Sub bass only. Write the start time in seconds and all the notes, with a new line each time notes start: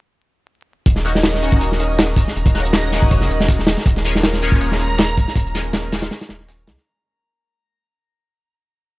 0.86 D#1
2.36 D#1
3.11 F1
3.30 D#1
3.86 D#1
5.35 D#1
6.30 D#1
6.67 C#2